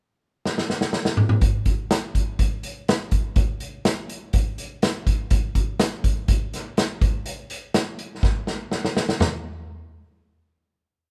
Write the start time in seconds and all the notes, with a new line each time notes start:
0.46 snare
0.58 snare
0.70 snare
0.81 snare
0.93 snare
1.05 snare
1.17 mid tom
1.29 mid tom
1.41 kick, closed hi-hat
1.66 kick, closed hi-hat
1.91 snare, closed hi-hat
2.15 kick, closed hi-hat
2.39 kick, closed hi-hat
2.63 closed hi-hat
2.88 snare, closed hi-hat
3.11 kick, closed hi-hat
3.36 kick, closed hi-hat
3.60 closed hi-hat
3.85 snare, closed hi-hat
4.09 closed hi-hat
4.33 kick, closed hi-hat
4.58 closed hi-hat
4.82 snare, closed hi-hat
5.07 kick, closed hi-hat
5.30 kick, closed hi-hat
5.55 kick, closed hi-hat
5.79 snare, closed hi-hat
6.04 kick, closed hi-hat
6.28 kick, closed hi-hat
6.54 snare, closed hi-hat
6.77 snare, closed hi-hat
7.01 kick, closed hi-hat
7.26 closed hi-hat
7.50 closed hi-hat
7.74 snare, closed hi-hat
7.99 closed hi-hat
8.23 kick, snare
8.47 snare
8.72 snare
8.85 snare
8.97 snare
9.09 snare
9.20 snare, floor tom